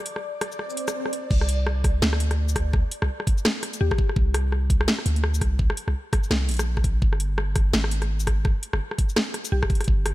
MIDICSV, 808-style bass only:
0, 0, Header, 1, 2, 480
1, 0, Start_track
1, 0, Tempo, 357143
1, 1755, Time_signature, 4, 2, 24, 8
1, 13632, End_track
2, 0, Start_track
2, 0, Title_t, "808-style bass"
2, 0, Program_c, 0, 38
2, 1756, Note_on_c, 0, 36, 92
2, 2703, Note_off_c, 0, 36, 0
2, 2717, Note_on_c, 0, 38, 96
2, 3800, Note_off_c, 0, 38, 0
2, 4061, Note_on_c, 0, 36, 84
2, 4150, Note_off_c, 0, 36, 0
2, 5118, Note_on_c, 0, 39, 104
2, 5248, Note_off_c, 0, 39, 0
2, 5596, Note_on_c, 0, 36, 98
2, 6543, Note_off_c, 0, 36, 0
2, 6798, Note_on_c, 0, 38, 97
2, 7264, Note_off_c, 0, 38, 0
2, 7276, Note_on_c, 0, 36, 103
2, 7640, Note_off_c, 0, 36, 0
2, 7897, Note_on_c, 0, 36, 86
2, 7988, Note_off_c, 0, 36, 0
2, 8475, Note_on_c, 0, 36, 106
2, 8716, Note_on_c, 0, 34, 98
2, 8736, Note_off_c, 0, 36, 0
2, 9423, Note_off_c, 0, 34, 0
2, 9435, Note_on_c, 0, 31, 92
2, 10383, Note_off_c, 0, 31, 0
2, 10396, Note_on_c, 0, 32, 100
2, 11480, Note_off_c, 0, 32, 0
2, 11738, Note_on_c, 0, 31, 84
2, 11828, Note_off_c, 0, 31, 0
2, 12796, Note_on_c, 0, 35, 99
2, 12927, Note_off_c, 0, 35, 0
2, 13276, Note_on_c, 0, 31, 95
2, 13632, Note_off_c, 0, 31, 0
2, 13632, End_track
0, 0, End_of_file